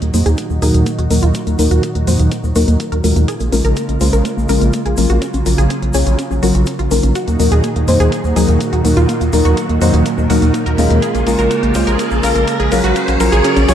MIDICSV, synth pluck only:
0, 0, Header, 1, 2, 480
1, 0, Start_track
1, 0, Key_signature, -6, "minor"
1, 0, Tempo, 483871
1, 1337, Time_signature, 4, 2, 24, 8
1, 13630, End_track
2, 0, Start_track
2, 0, Title_t, "Synth pluck"
2, 0, Program_c, 0, 84
2, 17, Note_on_c, 0, 58, 62
2, 78, Note_off_c, 0, 58, 0
2, 136, Note_on_c, 0, 58, 59
2, 198, Note_off_c, 0, 58, 0
2, 257, Note_on_c, 0, 68, 91
2, 318, Note_off_c, 0, 68, 0
2, 376, Note_on_c, 0, 58, 63
2, 438, Note_off_c, 0, 58, 0
2, 496, Note_on_c, 0, 58, 60
2, 558, Note_off_c, 0, 58, 0
2, 617, Note_on_c, 0, 68, 90
2, 679, Note_off_c, 0, 68, 0
2, 737, Note_on_c, 0, 58, 62
2, 798, Note_off_c, 0, 58, 0
2, 855, Note_on_c, 0, 58, 62
2, 918, Note_off_c, 0, 58, 0
2, 976, Note_on_c, 0, 66, 85
2, 1038, Note_off_c, 0, 66, 0
2, 1096, Note_on_c, 0, 58, 60
2, 1158, Note_off_c, 0, 58, 0
2, 1216, Note_on_c, 0, 65, 94
2, 1278, Note_off_c, 0, 65, 0
2, 1336, Note_on_c, 0, 58, 62
2, 1398, Note_off_c, 0, 58, 0
2, 1456, Note_on_c, 0, 58, 66
2, 1518, Note_off_c, 0, 58, 0
2, 1576, Note_on_c, 0, 58, 63
2, 1638, Note_off_c, 0, 58, 0
2, 1697, Note_on_c, 0, 66, 92
2, 1759, Note_off_c, 0, 66, 0
2, 1816, Note_on_c, 0, 58, 60
2, 1878, Note_off_c, 0, 58, 0
2, 1938, Note_on_c, 0, 58, 61
2, 1999, Note_off_c, 0, 58, 0
2, 2057, Note_on_c, 0, 66, 87
2, 2119, Note_off_c, 0, 66, 0
2, 2177, Note_on_c, 0, 58, 59
2, 2238, Note_off_c, 0, 58, 0
2, 2297, Note_on_c, 0, 58, 62
2, 2359, Note_off_c, 0, 58, 0
2, 2417, Note_on_c, 0, 58, 62
2, 2478, Note_off_c, 0, 58, 0
2, 2537, Note_on_c, 0, 66, 91
2, 2598, Note_off_c, 0, 66, 0
2, 2656, Note_on_c, 0, 58, 63
2, 2718, Note_off_c, 0, 58, 0
2, 2776, Note_on_c, 0, 58, 63
2, 2838, Note_off_c, 0, 58, 0
2, 2897, Note_on_c, 0, 70, 86
2, 2958, Note_off_c, 0, 70, 0
2, 3015, Note_on_c, 0, 58, 61
2, 3078, Note_off_c, 0, 58, 0
2, 3136, Note_on_c, 0, 58, 64
2, 3198, Note_off_c, 0, 58, 0
2, 3256, Note_on_c, 0, 68, 99
2, 3318, Note_off_c, 0, 68, 0
2, 3376, Note_on_c, 0, 58, 64
2, 3438, Note_off_c, 0, 58, 0
2, 3496, Note_on_c, 0, 58, 63
2, 3558, Note_off_c, 0, 58, 0
2, 3617, Note_on_c, 0, 70, 94
2, 3678, Note_off_c, 0, 70, 0
2, 3736, Note_on_c, 0, 58, 60
2, 3798, Note_off_c, 0, 58, 0
2, 3857, Note_on_c, 0, 58, 62
2, 3918, Note_off_c, 0, 58, 0
2, 3976, Note_on_c, 0, 58, 62
2, 4038, Note_off_c, 0, 58, 0
2, 4097, Note_on_c, 0, 70, 93
2, 4158, Note_off_c, 0, 70, 0
2, 4216, Note_on_c, 0, 58, 64
2, 4278, Note_off_c, 0, 58, 0
2, 4337, Note_on_c, 0, 58, 64
2, 4398, Note_off_c, 0, 58, 0
2, 4456, Note_on_c, 0, 70, 90
2, 4518, Note_off_c, 0, 70, 0
2, 4577, Note_on_c, 0, 58, 61
2, 4638, Note_off_c, 0, 58, 0
2, 4696, Note_on_c, 0, 58, 64
2, 4758, Note_off_c, 0, 58, 0
2, 4817, Note_on_c, 0, 68, 85
2, 4878, Note_off_c, 0, 68, 0
2, 4936, Note_on_c, 0, 58, 61
2, 4998, Note_off_c, 0, 58, 0
2, 5057, Note_on_c, 0, 66, 92
2, 5118, Note_off_c, 0, 66, 0
2, 5176, Note_on_c, 0, 61, 62
2, 5238, Note_off_c, 0, 61, 0
2, 5297, Note_on_c, 0, 61, 63
2, 5358, Note_off_c, 0, 61, 0
2, 5417, Note_on_c, 0, 61, 64
2, 5479, Note_off_c, 0, 61, 0
2, 5537, Note_on_c, 0, 68, 92
2, 5598, Note_off_c, 0, 68, 0
2, 5657, Note_on_c, 0, 61, 64
2, 5718, Note_off_c, 0, 61, 0
2, 5777, Note_on_c, 0, 61, 63
2, 5838, Note_off_c, 0, 61, 0
2, 5897, Note_on_c, 0, 68, 90
2, 5958, Note_off_c, 0, 68, 0
2, 6017, Note_on_c, 0, 61, 64
2, 6078, Note_off_c, 0, 61, 0
2, 6136, Note_on_c, 0, 61, 65
2, 6198, Note_off_c, 0, 61, 0
2, 6256, Note_on_c, 0, 61, 67
2, 6318, Note_off_c, 0, 61, 0
2, 6375, Note_on_c, 0, 66, 90
2, 6438, Note_off_c, 0, 66, 0
2, 6496, Note_on_c, 0, 61, 62
2, 6558, Note_off_c, 0, 61, 0
2, 6616, Note_on_c, 0, 61, 62
2, 6678, Note_off_c, 0, 61, 0
2, 6736, Note_on_c, 0, 65, 88
2, 6798, Note_off_c, 0, 65, 0
2, 6856, Note_on_c, 0, 61, 63
2, 6918, Note_off_c, 0, 61, 0
2, 6977, Note_on_c, 0, 61, 66
2, 7038, Note_off_c, 0, 61, 0
2, 7096, Note_on_c, 0, 66, 94
2, 7158, Note_off_c, 0, 66, 0
2, 7218, Note_on_c, 0, 58, 63
2, 7279, Note_off_c, 0, 58, 0
2, 7337, Note_on_c, 0, 58, 65
2, 7399, Note_off_c, 0, 58, 0
2, 7457, Note_on_c, 0, 68, 94
2, 7518, Note_off_c, 0, 68, 0
2, 7578, Note_on_c, 0, 58, 63
2, 7639, Note_off_c, 0, 58, 0
2, 7698, Note_on_c, 0, 58, 63
2, 7759, Note_off_c, 0, 58, 0
2, 7816, Note_on_c, 0, 58, 62
2, 7878, Note_off_c, 0, 58, 0
2, 7938, Note_on_c, 0, 68, 94
2, 7999, Note_off_c, 0, 68, 0
2, 8055, Note_on_c, 0, 58, 63
2, 8118, Note_off_c, 0, 58, 0
2, 8177, Note_on_c, 0, 58, 65
2, 8238, Note_off_c, 0, 58, 0
2, 8296, Note_on_c, 0, 68, 94
2, 8358, Note_off_c, 0, 68, 0
2, 8417, Note_on_c, 0, 58, 65
2, 8478, Note_off_c, 0, 58, 0
2, 8536, Note_on_c, 0, 58, 62
2, 8598, Note_off_c, 0, 58, 0
2, 8656, Note_on_c, 0, 66, 87
2, 8718, Note_off_c, 0, 66, 0
2, 8775, Note_on_c, 0, 58, 64
2, 8838, Note_off_c, 0, 58, 0
2, 8895, Note_on_c, 0, 65, 95
2, 8958, Note_off_c, 0, 65, 0
2, 9014, Note_on_c, 0, 58, 66
2, 9077, Note_off_c, 0, 58, 0
2, 9136, Note_on_c, 0, 58, 67
2, 9198, Note_off_c, 0, 58, 0
2, 9254, Note_on_c, 0, 58, 66
2, 9317, Note_off_c, 0, 58, 0
2, 9375, Note_on_c, 0, 66, 96
2, 9437, Note_off_c, 0, 66, 0
2, 9495, Note_on_c, 0, 58, 63
2, 9558, Note_off_c, 0, 58, 0
2, 9616, Note_on_c, 0, 58, 62
2, 9678, Note_off_c, 0, 58, 0
2, 9735, Note_on_c, 0, 66, 89
2, 9798, Note_off_c, 0, 66, 0
2, 9856, Note_on_c, 0, 58, 64
2, 9918, Note_off_c, 0, 58, 0
2, 9975, Note_on_c, 0, 58, 64
2, 10037, Note_off_c, 0, 58, 0
2, 10096, Note_on_c, 0, 58, 64
2, 10158, Note_off_c, 0, 58, 0
2, 10214, Note_on_c, 0, 66, 92
2, 10277, Note_off_c, 0, 66, 0
2, 10335, Note_on_c, 0, 58, 63
2, 10397, Note_off_c, 0, 58, 0
2, 10455, Note_on_c, 0, 58, 66
2, 10517, Note_off_c, 0, 58, 0
2, 10575, Note_on_c, 0, 70, 93
2, 10637, Note_off_c, 0, 70, 0
2, 10695, Note_on_c, 0, 58, 60
2, 10758, Note_off_c, 0, 58, 0
2, 10816, Note_on_c, 0, 58, 64
2, 10878, Note_off_c, 0, 58, 0
2, 10934, Note_on_c, 0, 68, 98
2, 10997, Note_off_c, 0, 68, 0
2, 11055, Note_on_c, 0, 58, 66
2, 11117, Note_off_c, 0, 58, 0
2, 11175, Note_on_c, 0, 58, 68
2, 11237, Note_off_c, 0, 58, 0
2, 11295, Note_on_c, 0, 70, 97
2, 11357, Note_off_c, 0, 70, 0
2, 11414, Note_on_c, 0, 58, 65
2, 11477, Note_off_c, 0, 58, 0
2, 11536, Note_on_c, 0, 58, 64
2, 11598, Note_off_c, 0, 58, 0
2, 11655, Note_on_c, 0, 58, 60
2, 11718, Note_off_c, 0, 58, 0
2, 11775, Note_on_c, 0, 70, 97
2, 11837, Note_off_c, 0, 70, 0
2, 11895, Note_on_c, 0, 58, 65
2, 11958, Note_off_c, 0, 58, 0
2, 12016, Note_on_c, 0, 58, 66
2, 12078, Note_off_c, 0, 58, 0
2, 12136, Note_on_c, 0, 70, 95
2, 12198, Note_off_c, 0, 70, 0
2, 12257, Note_on_c, 0, 58, 65
2, 12318, Note_off_c, 0, 58, 0
2, 12376, Note_on_c, 0, 58, 64
2, 12438, Note_off_c, 0, 58, 0
2, 12496, Note_on_c, 0, 68, 89
2, 12558, Note_off_c, 0, 68, 0
2, 12615, Note_on_c, 0, 58, 65
2, 12678, Note_off_c, 0, 58, 0
2, 12736, Note_on_c, 0, 66, 98
2, 12798, Note_off_c, 0, 66, 0
2, 12856, Note_on_c, 0, 61, 65
2, 12918, Note_off_c, 0, 61, 0
2, 12977, Note_on_c, 0, 61, 67
2, 13038, Note_off_c, 0, 61, 0
2, 13097, Note_on_c, 0, 61, 65
2, 13158, Note_off_c, 0, 61, 0
2, 13216, Note_on_c, 0, 68, 99
2, 13278, Note_off_c, 0, 68, 0
2, 13337, Note_on_c, 0, 61, 66
2, 13398, Note_off_c, 0, 61, 0
2, 13456, Note_on_c, 0, 61, 65
2, 13518, Note_off_c, 0, 61, 0
2, 13576, Note_on_c, 0, 68, 91
2, 13630, Note_off_c, 0, 68, 0
2, 13630, End_track
0, 0, End_of_file